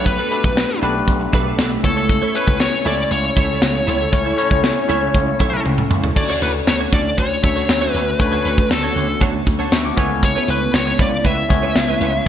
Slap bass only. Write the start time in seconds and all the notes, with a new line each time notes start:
Already playing: B1
0.44 B1
0.82 B1
1.08 B1
1.33 B1
1.58 B1
1.84 C#2
2.47 C#2
2.85 C#2
3.11 C#2
3.37 C#2
3.62 C#2
3.87 C#2
4.13 C#2
4.51 C#2
4.89 C#2
5.14 C#2
5.40 B1
5.65 C#2
5.91 C#2
6.16 D2
6.42 D2
6.67 D2
6.93 D2
7.18 D2
7.44 D2
7.69 D2
7.94 D2
8.20 D2
8.45 D2
8.71 D2
8.96 D2
9.21 D2
9.47 D2
9.72 D2
9.97 C#2
10.48 C#2
10.74 C#2
10.99 C#2
11.25 C#2
11.50 C#2
11.75 C#2
12.01 C#2